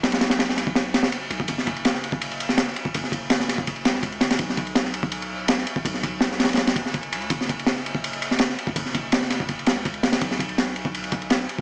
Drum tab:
RD |x-x-x-x-x---x---x---x---x---x---|x---x-x-x---x---x-x-x---x---x---|x---x---x---x---x-x-x---x-x-x-x-|x---x-x-x---x---x-x-----x---x---|
SD |o-o-o-o-o-o-o---o---o-o---------|--o-----o-o-----------o-o-o-----|--o-----o-o-o-------o-o-----o-o-|--o-----o-o-------------o-o-----|
BD |--------------o---------------o-|o---o---------o---------------o-|o---o---------o-o-------o-------|o---o---------o---------------o-|

RD |x---x---x---xxxxx-x-x---x-x-x-x-|x---x-x-x---x---x-x-x---x---x---|x---x---x---x---x-x-x---x-x-x-x-|x---x-x-x---x---x-x-x-x-x---x---|
SD |--o-----o-o-oo-oo-o---o---------|--o-----o-o-----------o-o-o-----|--o-----o-o-o-------o-o-----o-o-|--o-----o-o-------------o-o-----|
BD |o---o---------------o---o-------|o---o---------o---------------o-|o---o---------o-o-------o-------|o---o---------o-----o-----------|